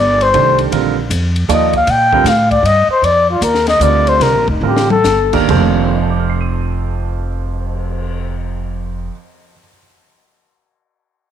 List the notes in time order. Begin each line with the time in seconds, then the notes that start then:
Already playing: G1 D5
0.21 C5, ride
0.34 C2 D#3 A3 D4 G4 C5, ride
0.58 ride
0.72 A#1 D3 G3 C4 F4 A#4, ride
1.10 F2, hi-hat pedal, ride
1.36 ride
1.49 D#2 F3 A#3 D#4 A4 D5, hi-hat pedal, ride
1.54 D#5
1.73 F5, kick, ride
1.87 A#2 G5, ride
2.12 D3 G3 C4 F4 A#4, kick
2.24 A2, snare, hi-hat pedal, ride
2.29 F5
2.51 D5, kick, ride
2.63 G2 D#5, ride
2.88 C5, muted upright bass stroke
3.02 F2 D5, ride
3.30 F4
3.41 D#2 A#4, hi-hat pedal, ride
3.55 snare
3.67 D#5, snare, ride
3.80 D2 D3 G3 C4 F4 A#4 D5, hi-hat pedal, ride
4.07 C5, ride
4.20 C2 A#4, snare, ride
4.34 A#1
4.47 F1 D#4, kick
4.61 A1 D3 G3 C4 F4 A#4
4.66 G4
4.77 snare
4.90 A4, mid tom
5.04 G1, snare, hi-hat pedal
5.33 D#3 A#3 D4 G4 A#4, kick, crash
5.48 F1 F2 F3 C4 A4 C5, kick, crash
5.78 cymbal swell
5.95 D#5
6.02 A5
6.10 D6
6.20 F6
6.30 C7
6.41 D#7